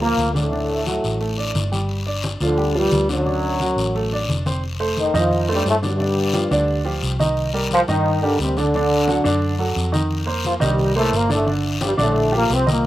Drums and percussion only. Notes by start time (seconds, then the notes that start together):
0.01 high conga
0.19 high conga, short guiro
0.36 high conga, short guiro
0.53 high conga, long guiro
0.70 high conga
0.87 high conga, short guiro
1.04 short guiro
1.21 high conga, long guiro
1.39 high conga
1.55 high conga, short guiro
1.73 high conga, short guiro
1.89 high conga, long guiro
2.07 high conga
2.23 high conga, short guiro
2.40 high conga, short guiro
2.58 high conga, long guiro
2.75 high conga
2.92 high conga, short guiro
3.09 high conga, short guiro
3.26 high conga, long guiro
3.43 high conga
3.60 high conga, short guiro
3.78 short guiro
3.96 high conga, long guiro
4.12 high conga
4.29 high conga, short guiro
4.46 high conga, short guiro
4.64 high conga, long guiro
4.81 high conga
4.97 high conga, short guiro
5.15 high conga, low conga, short guiro
5.31 high conga, low conga, long guiro
5.49 high conga
5.66 high conga, short guiro
5.83 high conga, short guiro
6.00 high conga, long guiro
6.17 high conga
6.33 high conga, short guiro
6.51 high conga, short guiro
6.68 high conga, long guiro
6.86 high conga
7.03 high conga, short guiro
7.19 high conga, short guiro
7.36 high conga, long guiro
7.53 high conga
7.70 high conga, short guiro
7.88 high conga, low conga, short guiro
8.05 high conga, long guiro
8.22 high conga
8.40 high conga, short guiro
8.57 high conga, short guiro
8.74 high conga, long guiro
8.91 high conga
9.08 high conga, short guiro
9.26 short guiro
9.42 high conga, long guiro
9.59 high conga
9.76 high conga, short guiro
9.94 high conga, short guiro
10.11 high conga, long guiro
10.28 high conga
10.45 high conga, short guiro
10.61 high conga, low conga, short guiro
10.78 high conga, low conga, long guiro
10.96 high conga
11.13 high conga, short guiro
11.30 high conga, short guiro
11.47 high conga, long guiro
11.64 high conga
11.81 high conga, short guiro
11.99 short guiro
12.16 high conga, long guiro
12.32 high conga
12.50 high conga, short guiro
12.67 high conga, short guiro